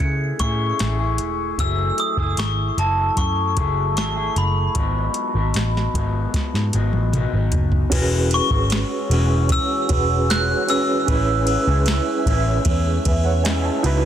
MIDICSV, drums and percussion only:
0, 0, Header, 1, 2, 480
1, 0, Start_track
1, 0, Tempo, 790514
1, 963, Time_signature, 4, 2, 24, 8
1, 8532, End_track
2, 0, Start_track
2, 0, Title_t, "Drums"
2, 0, Note_on_c, 9, 36, 86
2, 0, Note_on_c, 9, 42, 77
2, 58, Note_off_c, 9, 42, 0
2, 60, Note_off_c, 9, 36, 0
2, 239, Note_on_c, 9, 42, 68
2, 242, Note_on_c, 9, 36, 80
2, 300, Note_off_c, 9, 42, 0
2, 303, Note_off_c, 9, 36, 0
2, 482, Note_on_c, 9, 42, 69
2, 488, Note_on_c, 9, 38, 94
2, 542, Note_off_c, 9, 42, 0
2, 548, Note_off_c, 9, 38, 0
2, 718, Note_on_c, 9, 42, 64
2, 778, Note_off_c, 9, 42, 0
2, 962, Note_on_c, 9, 36, 97
2, 965, Note_on_c, 9, 42, 74
2, 1023, Note_off_c, 9, 36, 0
2, 1025, Note_off_c, 9, 42, 0
2, 1202, Note_on_c, 9, 42, 66
2, 1263, Note_off_c, 9, 42, 0
2, 1319, Note_on_c, 9, 36, 79
2, 1380, Note_off_c, 9, 36, 0
2, 1441, Note_on_c, 9, 42, 77
2, 1454, Note_on_c, 9, 38, 89
2, 1501, Note_off_c, 9, 42, 0
2, 1515, Note_off_c, 9, 38, 0
2, 1689, Note_on_c, 9, 42, 66
2, 1749, Note_off_c, 9, 42, 0
2, 1924, Note_on_c, 9, 36, 80
2, 1924, Note_on_c, 9, 42, 81
2, 1985, Note_off_c, 9, 36, 0
2, 1985, Note_off_c, 9, 42, 0
2, 2166, Note_on_c, 9, 42, 66
2, 2168, Note_on_c, 9, 36, 87
2, 2226, Note_off_c, 9, 42, 0
2, 2228, Note_off_c, 9, 36, 0
2, 2410, Note_on_c, 9, 42, 74
2, 2416, Note_on_c, 9, 38, 95
2, 2471, Note_off_c, 9, 42, 0
2, 2477, Note_off_c, 9, 38, 0
2, 2649, Note_on_c, 9, 42, 63
2, 2710, Note_off_c, 9, 42, 0
2, 2884, Note_on_c, 9, 42, 74
2, 2887, Note_on_c, 9, 36, 97
2, 2945, Note_off_c, 9, 42, 0
2, 2948, Note_off_c, 9, 36, 0
2, 3122, Note_on_c, 9, 42, 62
2, 3182, Note_off_c, 9, 42, 0
2, 3364, Note_on_c, 9, 42, 75
2, 3378, Note_on_c, 9, 38, 92
2, 3425, Note_off_c, 9, 42, 0
2, 3439, Note_off_c, 9, 38, 0
2, 3505, Note_on_c, 9, 38, 34
2, 3565, Note_off_c, 9, 38, 0
2, 3608, Note_on_c, 9, 36, 74
2, 3614, Note_on_c, 9, 42, 72
2, 3668, Note_off_c, 9, 36, 0
2, 3674, Note_off_c, 9, 42, 0
2, 3849, Note_on_c, 9, 36, 87
2, 3850, Note_on_c, 9, 42, 77
2, 3862, Note_on_c, 9, 38, 48
2, 3910, Note_off_c, 9, 36, 0
2, 3910, Note_off_c, 9, 42, 0
2, 3922, Note_off_c, 9, 38, 0
2, 3979, Note_on_c, 9, 38, 42
2, 4040, Note_off_c, 9, 38, 0
2, 4087, Note_on_c, 9, 42, 67
2, 4148, Note_off_c, 9, 42, 0
2, 4207, Note_on_c, 9, 48, 56
2, 4268, Note_off_c, 9, 48, 0
2, 4329, Note_on_c, 9, 47, 68
2, 4332, Note_on_c, 9, 42, 72
2, 4390, Note_off_c, 9, 47, 0
2, 4393, Note_off_c, 9, 42, 0
2, 4564, Note_on_c, 9, 42, 59
2, 4566, Note_on_c, 9, 43, 85
2, 4625, Note_off_c, 9, 42, 0
2, 4627, Note_off_c, 9, 43, 0
2, 4685, Note_on_c, 9, 43, 83
2, 4746, Note_off_c, 9, 43, 0
2, 4807, Note_on_c, 9, 49, 104
2, 4808, Note_on_c, 9, 36, 102
2, 4808, Note_on_c, 9, 51, 66
2, 4868, Note_off_c, 9, 49, 0
2, 4868, Note_off_c, 9, 51, 0
2, 4869, Note_off_c, 9, 36, 0
2, 5045, Note_on_c, 9, 51, 63
2, 5106, Note_off_c, 9, 51, 0
2, 5165, Note_on_c, 9, 36, 84
2, 5225, Note_off_c, 9, 36, 0
2, 5283, Note_on_c, 9, 51, 75
2, 5296, Note_on_c, 9, 38, 104
2, 5343, Note_off_c, 9, 51, 0
2, 5357, Note_off_c, 9, 38, 0
2, 5533, Note_on_c, 9, 51, 69
2, 5593, Note_off_c, 9, 51, 0
2, 5763, Note_on_c, 9, 51, 75
2, 5768, Note_on_c, 9, 36, 97
2, 5824, Note_off_c, 9, 51, 0
2, 5829, Note_off_c, 9, 36, 0
2, 6006, Note_on_c, 9, 51, 62
2, 6011, Note_on_c, 9, 36, 92
2, 6067, Note_off_c, 9, 51, 0
2, 6072, Note_off_c, 9, 36, 0
2, 6255, Note_on_c, 9, 51, 63
2, 6261, Note_on_c, 9, 38, 114
2, 6316, Note_off_c, 9, 51, 0
2, 6321, Note_off_c, 9, 38, 0
2, 6488, Note_on_c, 9, 51, 58
2, 6549, Note_off_c, 9, 51, 0
2, 6729, Note_on_c, 9, 36, 107
2, 6729, Note_on_c, 9, 51, 69
2, 6789, Note_off_c, 9, 51, 0
2, 6790, Note_off_c, 9, 36, 0
2, 6963, Note_on_c, 9, 51, 60
2, 7024, Note_off_c, 9, 51, 0
2, 7200, Note_on_c, 9, 51, 71
2, 7213, Note_on_c, 9, 38, 105
2, 7261, Note_off_c, 9, 51, 0
2, 7274, Note_off_c, 9, 38, 0
2, 7446, Note_on_c, 9, 36, 88
2, 7450, Note_on_c, 9, 51, 63
2, 7507, Note_off_c, 9, 36, 0
2, 7511, Note_off_c, 9, 51, 0
2, 7680, Note_on_c, 9, 51, 69
2, 7684, Note_on_c, 9, 36, 98
2, 7741, Note_off_c, 9, 51, 0
2, 7745, Note_off_c, 9, 36, 0
2, 7926, Note_on_c, 9, 51, 63
2, 7928, Note_on_c, 9, 36, 96
2, 7987, Note_off_c, 9, 51, 0
2, 7989, Note_off_c, 9, 36, 0
2, 8167, Note_on_c, 9, 51, 68
2, 8172, Note_on_c, 9, 38, 109
2, 8227, Note_off_c, 9, 51, 0
2, 8233, Note_off_c, 9, 38, 0
2, 8404, Note_on_c, 9, 51, 57
2, 8465, Note_off_c, 9, 51, 0
2, 8532, End_track
0, 0, End_of_file